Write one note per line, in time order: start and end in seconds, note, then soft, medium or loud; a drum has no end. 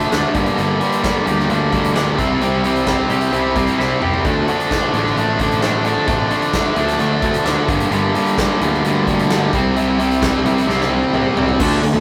0.00 0.11 D3 medium
0.00 0.12 D3 medium
0.00 0.12 F3 medium
0.00 0.13 A3 medium
0.00 0.13 D4 medium
0.00 0.35 F4 medium
0.00 closed hi-hat medium
0.12 0.23 D2 medium
0.12 0.34 D3 medium
0.12 0.34 F3 loud
0.12 0.35 A3 medium
0.12 0.35 D4 loud
0.12 snare loud
0.12 closed hi-hat medium
0.34 0.45 G1 medium
0.34 0.57 G2 medium
0.34 0.58 D3 loud
0.34 0.58 G3 loud
0.34 0.58 A#3 loud
0.34 0.58 D4 loud
0.34 kick loud
0.34 closed hi-hat medium
0.46 closed hi-hat medium
0.58 0.79 G1 loud
0.58 0.80 G2 medium
0.58 0.81 D3 loud
0.58 0.82 G3 medium
0.58 0.82 A#3 loud
0.58 0.82 D4 loud
0.58 closed hi-hat medium
0.81 1.03 G2 medium
0.81 1.04 D3 medium
0.81 1.05 G3 medium
0.81 1.04 A#3 medium
0.81 1.05 D4 loud
0.81 closed hi-hat medium
0.92 closed hi-hat medium
1.04 1.26 G2 medium
1.04 1.26 D3 medium
1.04 1.28 G3 loud
1.04 1.27 A#3 loud
1.04 1.27 D4 loud
1.04 kick medium
1.04 snare loud
1.04 closed hi-hat medium
1.26 1.48 D2 medium
1.26 1.49 G2 medium
1.26 1.49 D3 medium
1.26 1.50 G3 medium
1.26 1.50 A#3 medium
1.26 1.51 D4 medium
1.26 2.18 G4 medium
1.26 closed hi-hat medium
1.39 snare soft
1.49 2.14 D2 loud
1.49 1.72 G2 medium
1.49 1.73 D3 medium
1.49 1.73 G3 medium
1.49 1.73 A#3 medium
1.49 1.73 D4 loud
1.49 closed hi-hat medium
1.73 1.95 G2 medium
1.73 1.95 D3 medium
1.73 1.96 G3 loud
1.73 1.96 A#3 medium
1.73 1.96 D4 medium
1.73 kick medium
1.73 closed hi-hat medium
1.84 closed hi-hat medium
1.95 2.17 G2 medium
1.95 2.17 D3 loud
1.95 2.18 G3 loud
1.95 2.18 A#3 medium
1.95 2.18 D4 loud
1.95 snare loud
1.95 closed hi-hat medium
2.18 3.06 C2 loud
2.18 2.40 C3 medium
2.18 2.40 G3 medium
2.18 2.40 C4 medium
2.18 2.41 E4 medium
2.18 kick loud
2.18 closed hi-hat medium
2.41 2.63 C3 medium
2.41 2.63 G3 loud
2.41 2.63 C4 medium
2.41 2.64 E4 loud
2.41 closed hi-hat medium
2.63 2.85 C3 medium
2.63 3.79 E3 medium
2.63 2.86 G3 medium
2.63 2.86 C4 medium
2.63 2.86 E4 medium
2.63 closed hi-hat medium
2.76 closed hi-hat medium
2.86 3.08 C3 loud
2.86 3.08 G3 medium
2.86 3.09 C4 medium
2.86 3.09 E4 loud
2.86 kick medium
2.86 snare loud
2.86 closed hi-hat medium
3.09 3.31 C2 medium
3.09 3.31 C3 medium
3.09 3.31 G3 medium
3.09 3.32 C4 medium
3.09 3.32 E4 medium
3.09 4.01 G4 medium
3.09 closed hi-hat medium
3.21 closed hi-hat medium
3.32 3.54 C2 loud
3.32 3.55 C3 medium
3.32 3.56 G3 medium
3.32 3.56 C4 medium
3.32 3.57 E4 medium
3.32 closed hi-hat medium
3.56 3.66 C2 medium
3.56 3.78 C3 medium
3.56 3.79 G3 medium
3.56 3.79 C4 medium
3.56 3.80 E4 medium
3.56 kick medium
3.56 closed hi-hat medium
3.67 closed hi-hat medium
3.79 3.90 C2 medium
3.79 4.01 C3 medium
3.79 4.01 G3 loud
3.79 4.01 C4 medium
3.79 4.02 E4 loud
3.79 snare medium
4.02 4.12 C2 medium
4.02 4.23 C3 medium
4.02 4.24 G3 medium
4.02 4.24 C4 medium
4.02 4.24 E4 medium
4.02 4.25 G4 medium
4.02 mid tom medium
4.14 floor tom medium
4.25 4.46 D2 medium
4.25 4.48 D3 medium
4.25 4.49 F3 medium
4.25 4.49 A3 loud
4.25 4.49 D4 loud
4.25 kick loud
4.25 closed hi-hat medium
4.48 4.70 D3 medium
4.48 4.71 F3 medium
4.48 4.71 A3 medium
4.48 4.71 D4 medium
4.48 closed hi-hat medium
4.60 closed hi-hat medium
4.70 4.92 D3 medium
4.70 4.93 F3 loud
4.70 4.93 A3 loud
4.70 4.94 D4 loud
4.70 kick medium
4.70 snare loud
4.70 closed hi-hat medium
4.93 5.14 A1 medium
4.93 5.15 D3 medium
4.93 5.15 F3 medium
4.93 5.15 A3 medium
4.93 5.17 D4 medium
4.93 closed hi-hat medium
5.06 snare soft
5.16 5.93 A1 medium
5.16 5.37 D3 medium
5.16 5.38 F3 loud
5.16 5.38 A3 loud
5.16 5.39 D4 loud
5.16 closed hi-hat medium
5.38 5.60 D3 medium
5.38 5.60 F3 medium
5.38 5.61 A3 medium
5.38 5.62 D4 medium
5.38 kick medium
5.38 closed hi-hat medium
5.51 closed hi-hat medium
5.61 5.84 D3 medium
5.61 5.84 F3 loud
5.61 5.84 A3 loud
5.61 5.85 D4 loud
5.61 snare loud
5.61 closed hi-hat medium
5.84 6.06 D3 medium
5.84 6.07 F3 medium
5.84 6.07 A3 medium
5.84 6.08 D4 medium
5.84 closed hi-hat medium
5.96 6.07 D3 medium
6.07 6.29 A1 loud
6.07 6.29 D3 loud
6.07 6.30 F3 loud
6.07 6.30 A3 loud
6.07 6.31 D4 loud
6.07 kick loud
6.07 closed hi-hat medium
6.30 6.53 D3 medium
6.30 6.53 F3 medium
6.30 6.54 A3 medium
6.30 6.55 D4 loud
6.30 closed hi-hat medium
6.42 closed hi-hat medium
6.53 6.75 D3 medium
6.53 6.76 F3 loud
6.53 6.76 A3 loud
6.53 6.77 D4 loud
6.53 kick medium
6.53 snare loud
6.53 closed hi-hat medium
6.76 6.98 D2 loud
6.76 6.98 D3 medium
6.76 6.99 F3 medium
6.76 6.99 A3 medium
6.76 6.99 D4 loud
6.76 closed hi-hat medium
6.88 snare soft
6.88 closed hi-hat medium
6.99 7.20 D2 loud
6.99 7.21 D3 medium
6.99 7.22 F3 medium
6.99 7.22 A3 medium
6.99 7.23 D4 loud
6.99 closed hi-hat medium
7.22 7.33 D2 medium
7.22 7.44 D3 medium
7.22 7.44 F3 medium
7.22 7.45 A3 medium
7.22 7.45 D4 medium
7.22 kick medium
7.22 closed hi-hat medium
7.34 closed hi-hat medium
7.45 7.56 D2 medium
7.45 7.67 D3 loud
7.45 7.67 F3 medium
7.45 7.68 A3 loud
7.45 7.68 D4 loud
7.45 snare loud
7.45 closed hi-hat medium
7.68 7.79 G1 medium
7.68 7.90 G2 medium
7.68 7.91 D3 medium
7.68 7.92 G3 medium
7.68 7.91 A#3 loud
7.68 7.92 D4 loud
7.68 kick loud
7.68 closed hi-hat medium
7.80 closed hi-hat medium
7.91 8.12 G1 loud
7.91 8.13 G2 loud
7.91 8.13 D3 loud
7.91 8.14 G3 loud
7.91 8.14 A#3 loud
7.91 8.14 D4 loud
7.91 closed hi-hat medium
8.14 8.36 G2 medium
8.14 8.36 D3 medium
8.14 8.38 G3 medium
8.14 8.37 A#3 medium
8.14 8.38 D4 medium
8.14 closed hi-hat medium
8.26 closed hi-hat medium
8.37 8.59 G2 medium
8.37 8.59 D3 medium
8.37 8.61 G3 loud
8.37 8.60 A#3 loud
8.37 8.60 D4 loud
8.37 kick medium
8.37 snare loud
8.37 closed hi-hat medium
8.60 8.82 D2 medium
8.60 8.82 G2 medium
8.60 8.82 D3 medium
8.60 8.83 G3 medium
8.60 8.83 A#3 medium
8.60 8.84 D4 medium
8.60 closed hi-hat medium
8.74 snare soft
8.84 9.49 D2 loud
8.84 9.06 G2 loud
8.84 9.06 D3 loud
8.84 9.07 G3 loud
8.84 9.07 A#3 loud
8.84 9.07 D4 loud
8.84 closed hi-hat medium
9.07 9.29 G2 medium
9.07 9.29 D3 medium
9.07 9.29 G3 medium
9.07 9.30 A#3 loud
9.07 9.30 D4 loud
9.07 kick medium
9.07 closed hi-hat medium
9.19 closed hi-hat medium
9.30 9.51 G2 loud
9.30 9.51 D3 loud
9.30 9.52 G3 loud
9.30 9.52 A#3 loud
9.30 9.52 D4 loud
9.30 snare loud
9.30 closed hi-hat medium
9.53 10.41 C2 medium
9.53 9.75 C3 loud
9.53 9.75 G3 medium
9.53 9.75 C4 medium
9.53 9.76 E4 loud
9.53 kick loud
9.53 closed hi-hat medium
9.76 9.98 C3 medium
9.76 9.98 G3 loud
9.76 9.99 C4 loud
9.76 9.99 E4 loud
9.76 closed hi-hat medium
9.99 10.21 C3 medium
9.99 10.21 G3 medium
9.99 10.22 C4 medium
9.99 10.22 E4 medium
9.99 closed hi-hat medium
10.11 closed hi-hat medium
10.22 10.44 C3 medium
10.22 10.44 G3 medium
10.22 10.44 C4 loud
10.22 10.45 E4 loud
10.22 kick medium
10.22 snare loud
10.22 closed hi-hat medium
10.45 10.66 C2 medium
10.45 10.67 C3 medium
10.45 10.68 G3 medium
10.45 10.68 C4 medium
10.45 10.68 E4 loud
10.45 closed hi-hat medium
10.58 snare soft
10.58 closed hi-hat medium
10.68 10.89 C2 loud
10.68 10.89 C3 medium
10.68 10.90 G3 medium
10.68 10.90 C4 loud
10.68 10.90 E4 loud
10.68 snare medium
10.81 snare medium
10.90 11.01 C2 medium
10.90 11.13 C3 medium
10.90 11.14 G3 medium
10.90 11.14 C4 medium
10.90 11.14 E4 medium
11.03 high tom medium
11.13 11.24 C2 medium
11.13 11.36 C3 loud
11.13 11.37 G3 loud
11.13 11.36 C4 loud
11.13 11.36 E4 loud
11.13 mid tom medium
11.36 11.46 C2 medium
11.36 11.58 C3 medium
11.36 11.59 G3 medium
11.36 11.59 C4 medium
11.36 11.59 E4 medium
11.36 floor tom loud
11.49 floor tom medium
11.60 11.81 D2 loud
11.60 11.82 D3 loud
11.60 11.82 A3 loud
11.60 11.83 D4 loud
11.60 kick loud
11.60 crash loud
11.82 11.93 D2 medium
11.82 11.93 D3 medium
11.82 11.93 A3 medium
11.82 open hi-hat medium
11.94 12.00 D2 medium
11.94 12.00 D3 medium
11.94 12.00 A3 medium